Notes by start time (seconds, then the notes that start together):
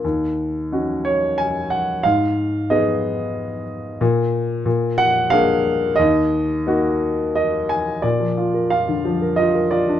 0.04 D#2
0.72 C#4 D#4 F#4
1.05 C#5
1.38 G#5
1.70 F#5
2.03 G#2 F5
2.70 B3 D#4 G#4 D#5
4.01 A#2
4.66 A#2
4.98 F#5
5.30 A#3 D4 G#4 F5
5.96 D#2 D#5
6.67 A#3 D#4 F#4
7.35 D#5
7.69 G#5
8.02 A#2 D5
8.20 F3
8.37 F4
8.54 A#4
8.70 F4 F5
8.89 D3
9.05 F3
9.22 A#4
9.36 F4 D#5
9.55 A#4
9.71 F4 D5
9.89 D4